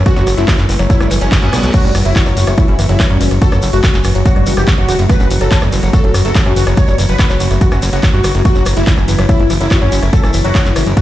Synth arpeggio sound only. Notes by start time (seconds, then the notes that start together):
0.06 F#4
0.16 F#3
0.27 F#4
0.37 A3
0.48 F#3
0.69 E3
0.79 F#3
0.90 F#3
1.00 G3
1.11 E3
1.21 F#3
1.32 F#4
1.42 C#4
1.53 G3
1.63 F#3
1.74 F#3
1.84 G3
1.95 E3
2.05 F#3
2.16 F#4
2.26 F#3
2.37 F#4
2.47 A3
2.58 F#3
2.68 C#4
2.79 E3
2.89 F#3
3.00 F#3
3.10 G3
3.21 E3
3.31 F#3
3.42 F#4
3.52 F#3
3.63 F#4
3.73 A3
3.84 F#3
3.94 C#4
4.05 E3
4.15 F#3
4.26 F#3
4.36 G3
4.47 E3
4.57 F#3
4.68 F#4
4.78 F#3
4.89 F#4
4.99 A3
5.10 F#3
5.20 C#4
5.31 E3
5.41 F#3
5.51 F#3
5.62 G3
5.72 E3
5.83 F#3
5.93 F#4
6.04 F#3
6.14 F#4
6.25 A3
6.35 F#3
6.46 C#4
6.56 E3
6.67 F#3
6.77 F#3
6.88 G3
6.98 E3
7.09 F#3
7.19 F#4
7.30 F#3
7.40 F#4
7.51 A3
7.61 F#3
7.72 C#4
7.82 F#3
7.93 F#3
8.03 F#3
8.14 F#4
8.24 F#4
8.35 A3
8.45 F#4
8.56 F#3
8.66 F#4
8.77 A3
8.87 F#3
8.98 C#4
9.08 E3
9.19 F#3
9.29 F#3
9.39 F#3
9.50 E3
9.61 F#3
9.71 F#4
9.81 F#3
9.92 F#4
10.02 A3
10.13 F#3
10.23 C#4
10.34 E3
10.44 F#3
10.55 F#3
10.65 F#3
10.76 E3
10.86 F#3
10.97 F#4